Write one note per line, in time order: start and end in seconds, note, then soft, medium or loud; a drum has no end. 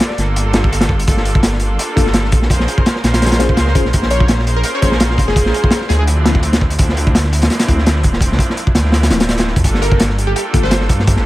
0.00 0.16 A#3 medium
0.00 0.16 D4 medium
0.00 0.16 F4 medium
0.00 0.16 G4 medium
0.00 0.16 A4 medium
0.00 0.18 D5 loud
0.00 snare loud
0.10 snare medium
0.18 0.70 G1 loud
0.18 1.05 A#3 medium
0.18 1.05 D4 medium
0.18 1.05 F4 medium
0.18 1.05 G4 medium
0.18 1.05 A4 loud
0.18 snare soft
0.18 closed hi-hat medium
0.36 closed hi-hat medium
0.53 0.63 A#3 medium
0.53 0.63 D4 medium
0.53 0.63 F4 medium
0.53 0.63 A4 loud
0.53 snare loud
0.53 closed hi-hat medium
0.64 kick loud
0.71 1.06 G1 loud
0.71 closed hi-hat medium
0.81 snare loud
0.81 closed hi-hat medium
0.89 kick medium
1.00 closed hi-hat medium
1.07 1.78 G1 loud
1.07 1.59 A#3 medium
1.07 1.59 D4 medium
1.07 1.59 F4 medium
1.07 1.59 G4 medium
1.07 1.59 A4 medium
1.07 kick loud
1.07 closed hi-hat medium
1.17 snare medium
1.25 closed hi-hat medium
1.35 kick loud
1.43 snare loud
1.43 closed hi-hat medium
1.53 snare soft
1.60 2.48 A#3 medium
1.60 2.48 D4 medium
1.60 2.48 F4 medium
1.60 2.48 G4 medium
1.60 2.48 A4 loud
1.60 closed hi-hat medium
1.79 closed hi-hat medium
1.96 2.34 G1 medium
1.96 2.06 A#3 medium
1.96 2.06 D4 medium
1.96 2.06 F4 medium
1.96 2.06 A4 medium
1.96 kick loud
1.96 closed hi-hat medium
2.06 snare medium
2.13 snare loud
2.13 closed hi-hat medium
2.24 snare medium
2.32 2.58 A#1 medium
2.32 kick loud
2.32 closed hi-hat medium
2.42 snare medium
2.50 3.02 C#4 medium
2.50 3.02 F4 medium
2.50 3.02 G#4 medium
2.50 3.02 A#4 medium
2.50 3.02 C5 medium
2.50 kick loud
2.50 closed hi-hat medium
2.60 2.67 A#1 medium
2.60 snare medium
2.68 closed hi-hat medium
2.78 kick loud
2.86 snare loud
2.86 closed hi-hat medium
2.96 snare medium
3.04 3.56 A#1 loud
3.04 3.47 C#4 medium
3.04 3.47 F4 medium
3.04 3.47 G#4 medium
3.04 3.47 A#4 medium
3.04 3.47 C5 loud
3.04 snare loud
3.04 closed hi-hat medium
3.14 snare loud
3.14 closed hi-hat medium
3.22 snare medium
3.22 closed hi-hat medium
3.26 snare medium
3.26 closed hi-hat medium
3.32 snare loud
3.32 closed hi-hat medium
3.39 3.53 C#4 medium
3.39 3.53 F4 medium
3.39 3.53 G#4 medium
3.39 3.53 C5 medium
3.39 snare loud
3.39 closed hi-hat medium
3.49 3.91 C#4 medium
3.49 3.91 F4 medium
3.49 3.91 G#4 medium
3.49 3.91 A#4 medium
3.49 3.91 C5 medium
3.49 kick loud
3.57 3.77 C#2 medium
3.57 snare loud
3.57 closed hi-hat medium
3.67 snare soft
3.75 3.84 F1 medium
3.75 3.84 C#4 medium
3.75 3.84 F4 medium
3.75 3.84 G#4 medium
3.75 3.84 C5 medium
3.75 kick loud
3.75 closed hi-hat medium
3.85 3.92 A#1 medium
3.85 snare soft
3.93 4.63 A#1 medium
3.93 4.45 C#4 medium
3.93 4.45 F4 medium
3.93 4.45 G#4 medium
3.93 4.45 A#4 medium
3.93 4.45 C5 medium
3.93 kick loud
3.93 closed hi-hat medium
4.02 snare medium
4.10 4.33 C#5 medium
4.10 closed hi-hat medium
4.20 kick medium
4.28 snare loud
4.28 closed hi-hat medium
4.39 snare medium
4.47 5.34 C#4 medium
4.47 5.34 F4 medium
4.47 5.34 G#4 medium
4.47 5.34 A#4 medium
4.47 5.34 C5 loud
4.47 closed hi-hat medium
4.56 4.62 A#4 medium
4.63 4.71 A#4 medium
4.63 closed hi-hat medium
4.75 4.80 C#5 medium
4.82 5.20 A#1 medium
4.82 4.91 C#4 medium
4.82 4.91 F4 medium
4.82 4.91 G#4 medium
4.82 4.91 C5 medium
4.82 4.89 C#5 medium
4.82 kick medium
4.82 closed hi-hat medium
4.92 snare medium
5.00 snare loud
5.00 closed hi-hat medium
5.10 snare medium
5.18 5.47 F1 medium
5.18 kick medium
5.18 closed hi-hat medium
5.28 5.77 G#4 loud
5.28 snare medium
5.36 5.87 C#4 medium
5.36 5.87 F4 medium
5.36 5.87 G#4 medium
5.36 5.87 A#4 medium
5.36 5.87 C5 medium
5.36 kick loud
5.36 closed hi-hat medium
5.46 5.53 A#1 medium
5.46 snare medium
5.54 closed hi-hat medium
5.64 kick loud
5.71 snare loud
5.71 closed hi-hat medium
5.81 snare medium
5.89 6.42 D2 loud
5.89 6.77 F3 medium
5.89 6.77 A3 medium
5.89 6.77 C4 medium
5.89 6.77 D4 medium
5.89 6.77 E4 loud
5.89 5.95 G#4 medium
5.89 snare medium
5.89 closed hi-hat medium
5.99 6.04 G#4 medium
6.07 closed hi-hat medium
6.25 6.34 F3 medium
6.25 6.34 A3 medium
6.25 6.34 C4 medium
6.25 6.34 E4 medium
6.25 snare loud
6.25 closed hi-hat medium
6.35 kick loud
6.43 6.77 D2 loud
6.43 closed hi-hat medium
6.53 snare loud
6.53 closed hi-hat medium
6.61 kick medium
6.70 closed hi-hat medium
6.78 7.49 D2 medium
6.78 7.30 F3 medium
6.78 7.30 A3 medium
6.78 7.30 C4 medium
6.78 7.30 D4 medium
6.78 7.30 E4 medium
6.78 kick loud
6.78 closed hi-hat medium
6.89 snare medium
6.97 closed hi-hat medium
7.07 kick loud
7.15 snare loud
7.15 closed hi-hat medium
7.24 snare medium
7.32 8.20 F3 medium
7.32 8.20 A3 medium
7.32 8.20 C4 medium
7.32 8.20 D4 medium
7.32 8.20 E4 loud
7.32 closed hi-hat medium
7.42 snare loud
7.42 closed hi-hat medium
7.50 snare loud
7.50 closed hi-hat medium
7.59 snare loud
7.59 closed hi-hat medium
7.68 8.06 D2 medium
7.68 7.77 F3 medium
7.68 7.77 A3 medium
7.68 7.77 C4 medium
7.68 7.77 E4 loud
7.68 kick medium
7.68 closed hi-hat medium
7.78 snare medium
7.86 snare loud
7.86 closed hi-hat medium
7.95 snare medium
8.03 8.33 D1 medium
8.03 kick loud
8.03 closed hi-hat medium
8.13 snare medium
8.21 8.73 F3 medium
8.21 8.73 A3 medium
8.21 8.73 C4 medium
8.21 8.73 D4 medium
8.21 8.73 E4 medium
8.21 kick loud
8.21 closed hi-hat medium
8.31 8.39 D2 medium
8.31 snare medium
8.39 kick medium
8.39 closed hi-hat medium
8.50 snare soft
8.57 closed hi-hat medium
8.67 kick medium
8.75 9.12 D2 loud
8.75 9.19 F3 medium
8.75 9.18 A3 medium
8.75 9.18 C4 medium
8.75 9.19 D4 medium
8.75 9.18 E4 loud
8.75 snare loud
8.75 closed hi-hat medium
8.85 snare soft
8.92 snare loud
8.92 closed hi-hat medium
9.03 snare loud
9.03 closed hi-hat medium
9.10 9.58 D1 medium
9.10 9.20 F3 medium
9.10 9.20 A3 medium
9.10 9.20 C4 medium
9.10 9.20 E4 medium
9.10 snare loud
9.10 closed hi-hat medium
9.20 9.62 F3 medium
9.20 9.62 A3 medium
9.20 9.62 C4 medium
9.20 9.62 D4 medium
9.20 9.62 E4 medium
9.20 snare loud
9.20 closed hi-hat medium
9.29 snare loud
9.29 closed hi-hat medium
9.38 snare loud
9.38 closed hi-hat medium
9.47 snare medium
9.56 9.64 G2 medium
9.56 kick medium
9.56 closed hi-hat medium
9.64 10.34 G1 medium
9.64 10.16 A#3 medium
9.64 10.16 D4 medium
9.64 10.16 F4 medium
9.64 10.16 G4 medium
9.64 10.16 A4 medium
9.64 kick loud
9.64 closed hi-hat medium
9.74 snare medium
9.82 10.04 A#4 medium
9.82 closed hi-hat medium
9.92 kick medium
10.00 snare loud
10.00 closed hi-hat medium
10.09 snare soft
10.18 11.05 A#3 medium
10.18 11.05 D4 medium
10.18 11.05 F4 medium
10.18 11.05 G4 medium
10.18 11.05 A4 loud
10.18 closed hi-hat medium
10.27 10.33 G4 medium
10.36 10.42 G4 medium
10.36 closed hi-hat medium
10.53 10.91 G1 medium
10.53 10.63 A#3 medium
10.53 10.63 D4 medium
10.53 10.63 F4 medium
10.53 10.63 A4 loud
10.53 kick loud
10.53 closed hi-hat medium
10.63 10.84 C5 medium
10.63 snare medium
10.71 snare loud
10.71 closed hi-hat medium
10.81 snare medium
10.89 11.19 G2 medium
10.89 kick medium
10.89 closed hi-hat medium
10.99 snare medium
11.07 11.26 A#3 medium
11.07 11.26 D4 medium
11.07 11.26 F4 medium
11.07 11.26 G4 medium
11.07 11.26 A4 medium
11.07 kick loud
11.07 closed hi-hat medium
11.16 11.24 G1 medium
11.16 snare medium